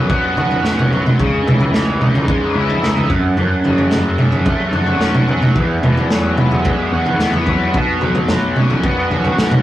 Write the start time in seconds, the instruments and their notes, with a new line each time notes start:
Already playing: fingered electric bass B1, overdriven electric guitar B2 F#3 C#4, transistor combo organ F#4 B4 C#5 F#5
0.10 overdriven electric guitar B3, kick, floor tom
0.36 fingered electric bass B1, overdriven electric guitar F#4, floor tom
0.51 floor tom
0.64 fingered electric bass B1, overdriven electric guitar C#4, snare
0.79 floor tom, mid tom
0.92 overdriven electric guitar F#3, floor tom
1.06 mid tom
1.19 fingered electric bass C#2, overdriven electric guitar C#3, transistor combo organ G#4 D#5, kick, floor tom
1.46 fingered electric bass C#2, overdriven electric guitar E3, floor tom, mid tom
1.60 floor tom
1.74 overdriven electric guitar E3, snare
2.01 overdriven electric guitar D#4, mid tom
2.15 floor tom
2.28 overdriven electric guitar G#3, kick, floor tom
2.55 fingered electric bass C#2, overdriven electric guitar E4
2.70 floor tom
2.83 fingered electric bass C#2, overdriven electric guitar D#4, snare
2.97 floor tom
3.10 fingered electric bass F#2, overdriven electric guitar F#2, transistor combo organ F#4 A4 F#5, kick, floor tom
3.37 overdriven electric guitar F#2, floor tom
3.63 fingered electric bass F#2, overdriven electric guitar C#3, floor tom
3.78 floor tom
3.91 overdriven electric guitar F#3, snare, floor tom
4.18 overdriven electric guitar C#4, mid tom
4.32 floor tom
4.46 overdriven electric guitar A3, kick, floor tom
4.73 fingered electric bass F#2, overdriven electric guitar F#4, floor tom
4.87 floor tom
4.99 fingered electric bass B1, overdriven electric guitar C#4, snare
5.15 floor tom, mid tom
5.28 overdriven electric guitar F#3, floor tom
5.42 mid tom
5.55 fingered electric bass E2, overdriven electric guitar E2, transistor combo organ G#4 B4 E5 F#5, kick, floor tom
5.83 fingered electric bass E2, overdriven electric guitar B2, floor tom, mid tom
5.97 floor tom
6.10 overdriven electric guitar F#3, snare
6.37 overdriven electric guitar B3, mid tom
6.51 floor tom
6.65 overdriven electric guitar G#3, kick, floor tom
6.92 fingered electric bass E2, overdriven electric guitar F#4
7.06 floor tom
7.20 fingered electric bass E2, overdriven electric guitar B3, snare
7.33 floor tom
7.46 overdriven electric guitar F#3, kick, floor tom
7.73 fingered electric bass B1, overdriven electric guitar B2, transistor combo organ F#4 C#5, kick, floor tom
8.01 fingered electric bass B1, overdriven electric guitar F#3, floor tom
8.15 floor tom
8.28 overdriven electric guitar F#3, snare, floor tom
8.56 overdriven electric guitar C#4, mid tom
8.70 floor tom
8.84 overdriven electric guitar B3, kick, floor tom
9.10 fingered electric bass B1, overdriven electric guitar F#4, floor tom
9.25 floor tom
9.38 fingered electric bass B1, overdriven electric guitar C#4, snare
9.51 floor tom, mid tom